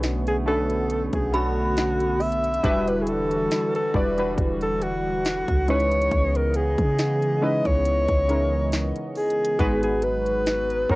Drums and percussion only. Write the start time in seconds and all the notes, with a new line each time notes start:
0.03 snare, closed hi-hat
0.27 closed hi-hat
0.70 closed hi-hat
0.90 closed hi-hat
1.13 kick, closed hi-hat
1.34 closed hi-hat
1.77 snare, closed hi-hat
2.00 closed hi-hat
2.20 closed hi-hat, open hi-hat
2.32 closed hi-hat
2.44 closed hi-hat
2.54 closed hi-hat
2.64 kick, closed hi-hat
2.88 closed hi-hat
3.07 closed hi-hat
3.31 closed hi-hat
3.51 snare, closed hi-hat
3.75 closed hi-hat
3.94 kick
4.18 closed hi-hat
4.38 kick, closed hi-hat
4.61 closed hi-hat
4.82 closed hi-hat
5.25 snare, closed hi-hat
5.48 kick, closed hi-hat
5.68 closed hi-hat
5.80 closed hi-hat
5.91 closed hi-hat
6.02 closed hi-hat
6.11 kick, closed hi-hat
6.35 closed hi-hat
6.54 closed hi-hat
6.78 kick, closed hi-hat
6.99 snare, closed hi-hat
7.22 closed hi-hat
7.65 kick, closed hi-hat
7.85 closed hi-hat
8.08 kick, closed hi-hat
8.29 closed hi-hat
8.72 snare, closed hi-hat
8.96 closed hi-hat
9.15 closed hi-hat, open hi-hat
9.30 closed hi-hat
9.45 closed hi-hat
9.59 kick, closed hi-hat
9.83 closed hi-hat
10.02 closed hi-hat
10.26 closed hi-hat
10.46 snare, closed hi-hat
10.70 closed hi-hat
10.90 kick